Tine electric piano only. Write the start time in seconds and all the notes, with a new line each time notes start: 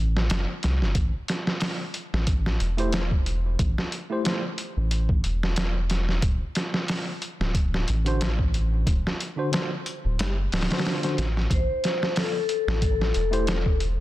2.77 A3 E4 G4 C5
4.10 A3 E4 G4 C5
4.24 A3 E4 G4 C5
8.05 D3 D4 F#4 C5
9.36 D3 D4 F#4 C5
9.51 D3 D4 F#4 C5
10.69 D3 D4 F#4 C5
11.01 D3 D4 F#4 C5
13.31 A3 E4 G4 C5